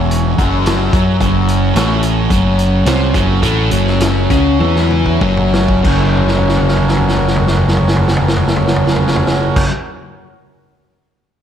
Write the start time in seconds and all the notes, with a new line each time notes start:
Already playing: E1 E2 E3 C#4 F#4 C#5 A#5
0.11 closed hi-hat
0.38 F#1 F#2 F#3, kick, closed hi-hat
0.66 snare, closed hi-hat
0.93 F#2 F#3 F#4, kick, closed hi-hat
1.20 F#1 F#2 F#3, kick, closed hi-hat
1.48 closed hi-hat
1.74 A1 A2 A3, snare, closed hi-hat
2.03 closed hi-hat
2.30 F#1 F#2 F#3, kick, closed hi-hat
2.59 closed hi-hat
2.85 C2 C3 C4, snare, closed hi-hat
3.14 F#1 F#2 F#3, kick, closed hi-hat
3.42 A1 A2 A3, kick, closed hi-hat
3.71 F#1 F#2 F#3, closed hi-hat
3.87 snare
4.00 snare, closed hi-hat
4.29 C#2 C#3 C#4, kick, snare, closed hi-hat
4.59 E2 E3 E4, high tom
4.76 snare
4.91 mid tom
5.06 kick
5.21 F#1 F#2 F#3, kick
5.37 mid tom
5.54 snare
5.68 kick
5.83 F#1 F#2 C#3 C#4 F#4 A#4 C#5, kick, crash
5.87 F#3
6.17 floor tom
6.28 snare
6.37 floor tom
6.49 snare
6.57 floor tom
6.68 snare
6.77 floor tom
6.88 snare
6.97 floor tom
7.08 snare
7.17 floor tom
7.28 snare
7.36 floor tom
7.47 snare
7.57 floor tom
7.68 snare
7.77 floor tom
7.88 snare
7.97 floor tom
8.08 snare
8.17 floor tom
8.28 snare
8.36 floor tom
8.48 snare
8.56 floor tom
8.67 snare
8.76 floor tom
8.87 snare
8.96 floor tom
9.08 snare
9.16 floor tom
9.27 snare
9.56 kick, crash